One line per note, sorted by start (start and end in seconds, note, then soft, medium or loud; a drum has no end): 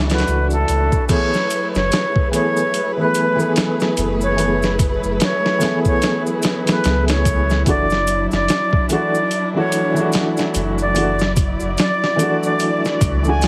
0.00 0.23 C#2 medium
0.00 1.06 F#3 medium
0.00 1.06 D4 medium
0.00 1.06 E4 medium
0.07 1.04 E3 medium
0.07 1.05 A3 medium
0.07 closed hi-hat medium
0.07 maracas soft
0.11 1.06 D4 medium
0.11 1.07 F#4 medium
0.11 0.47 B4 medium
0.11 snare medium
0.18 snare medium
0.18 closed hi-hat medium
0.27 0.64 C#2 medium
0.27 maracas soft
0.51 1.05 A4 medium
0.51 maracas soft
0.68 0.90 C#2 medium
0.68 closed hi-hat medium
0.68 maracas medium
0.92 kick loud
0.92 maracas soft
1.08 1.25 E3 medium
1.08 13.48 F#3 medium
1.08 1.26 A3 medium
1.08 7.63 A3 medium
1.08 1.26 B3 medium
1.08 13.48 E4 medium
1.08 7.63 G#4 medium
1.08 1.27 G#4 medium
1.08 7.63 B4 medium
1.08 1.68 C#5 loud
1.08 kick loud
1.08 closed hi-hat medium
1.08 crash medium
1.08 maracas medium
1.34 snare soft
1.34 maracas soft
1.50 closed hi-hat medium
1.50 maracas medium
1.75 1.90 F#1 loud
1.75 2.28 C#5 loud
1.75 snare soft
1.75 maracas soft
1.92 snare loud
1.92 closed hi-hat medium
1.92 maracas medium
2.16 kick loud
2.31 2.58 E3 medium
2.31 2.58 A3 medium
2.31 2.59 B3 medium
2.31 2.59 G#4 medium
2.31 2.92 C#5 medium
2.31 closed hi-hat medium
2.31 maracas loud
2.57 maracas soft
2.74 closed hi-hat medium
2.74 maracas medium
2.97 3.33 E3 medium
2.97 3.33 A3 medium
2.97 3.34 B3 medium
2.97 3.34 G#4 medium
2.97 3.52 B4 medium
3.15 closed hi-hat medium
3.15 maracas loud
3.36 4.33 E3 medium
3.36 4.34 A3 medium
3.36 maracas soft
3.40 4.35 B3 medium
3.40 4.36 G#4 loud
3.56 snare loud
3.56 closed hi-hat loud
3.56 maracas soft
3.80 snare soft
3.80 maracas soft
3.97 4.99 F#1 loud
3.97 closed hi-hat medium
3.97 maracas medium
4.21 4.75 C#5 loud
4.21 maracas soft
4.37 4.54 E3 medium
4.37 4.55 A3 medium
4.37 4.55 B3 medium
4.37 4.56 G#4 medium
4.37 closed hi-hat medium
4.37 maracas medium
4.62 snare medium
4.62 maracas soft
4.79 kick loud
4.79 closed hi-hat medium
4.79 maracas medium
5.03 5.19 F#1 loud
5.03 maracas soft
5.20 5.80 C#5 loud
5.20 snare loud
5.20 closed hi-hat medium
5.20 maracas medium
5.46 snare soft
5.59 6.61 E3 medium
5.59 6.62 A3 medium
5.59 closed hi-hat medium
5.59 maracas medium
5.63 6.63 B3 medium
5.63 6.64 G#4 loud
5.63 snare loud
5.85 6.23 C#5 medium
5.85 kick medium
5.85 maracas soft
6.02 snare loud
6.02 closed hi-hat medium
6.02 maracas soft
6.26 maracas soft
6.42 snare loud
6.42 closed hi-hat medium
6.42 maracas medium
6.65 7.61 E3 medium
6.65 7.63 A3 medium
6.65 closed hi-hat medium
6.65 maracas soft
6.69 7.64 B3 medium
6.69 7.65 G#4 medium
6.69 7.05 B4 medium
6.69 snare loud
6.84 7.64 C#2 medium
6.84 snare loud
6.84 closed hi-hat medium
6.84 maracas soft
7.08 7.63 C#5 loud
7.08 snare loud
7.08 closed hi-hat medium
7.08 maracas soft
7.25 kick loud
7.25 closed hi-hat medium
7.25 maracas medium
7.50 snare soft
7.50 maracas soft
7.65 8.27 F#1 loud
7.65 7.83 E3 medium
7.65 7.83 A3 medium
7.65 10.92 D4 medium
7.65 7.84 D4 medium
7.65 7.84 F#4 medium
7.65 8.26 D5 loud
7.65 kick loud
7.65 closed hi-hat medium
7.65 maracas medium
7.90 snare soft
7.90 maracas soft
8.07 closed hi-hat medium
8.07 maracas loud
8.31 8.47 F#1 loud
8.31 8.86 D5 loud
8.31 snare soft
8.31 maracas soft
8.48 snare loud
8.48 closed hi-hat medium
8.48 maracas medium
8.73 kick loud
8.89 9.15 E3 medium
8.89 9.16 A3 medium
8.89 9.17 D4 medium
8.89 9.17 F#4 loud
8.89 9.49 D5 loud
8.89 closed hi-hat medium
8.89 maracas medium
9.15 maracas soft
9.31 closed hi-hat medium
9.31 maracas medium
9.54 9.90 E3 medium
9.54 9.91 A3 medium
9.54 9.91 D4 medium
9.54 9.92 F#4 medium
9.54 10.10 C#5 medium
9.72 closed hi-hat medium
9.72 maracas loud
9.94 10.90 E3 medium
9.94 10.91 A3 medium
9.94 maracas soft
9.98 10.92 D4 medium
9.98 10.94 F#4 medium
10.12 snare loud
10.12 closed hi-hat loud
10.12 maracas medium
10.37 snare soft
10.37 maracas soft
10.54 11.57 F#1 loud
10.54 closed hi-hat medium
10.54 maracas loud
10.78 11.33 D5 loud
10.78 maracas soft
10.94 11.12 E3 medium
10.94 11.12 A3 medium
10.94 11.13 D4 medium
10.94 11.13 F#4 medium
10.94 13.48 D5 medium
10.94 closed hi-hat medium
10.94 maracas medium
11.19 snare medium
11.19 maracas soft
11.36 kick loud
11.36 closed hi-hat medium
11.36 maracas loud
11.60 11.76 F#1 loud
11.60 maracas soft
11.78 12.37 D5 medium
11.78 snare loud
11.78 closed hi-hat medium
11.78 maracas medium
12.04 snare soft
12.16 13.18 E3 medium
12.16 13.19 A3 medium
12.16 closed hi-hat medium
12.16 maracas medium
12.20 13.20 D4 medium
12.20 13.21 F#4 loud
12.43 12.81 D5 medium
12.43 maracas soft
12.59 closed hi-hat medium
12.59 maracas soft
12.85 snare soft
12.85 maracas soft
13.01 13.48 C#2 loud
13.01 kick loud
13.01 closed hi-hat medium
13.01 maracas medium
13.22 13.48 E3 medium
13.22 13.48 A3 medium
13.22 maracas soft
13.27 13.48 D4 medium
13.27 13.48 F#4 medium
13.27 13.48 G#5 medium
13.41 snare loud
13.41 closed hi-hat medium
13.41 maracas medium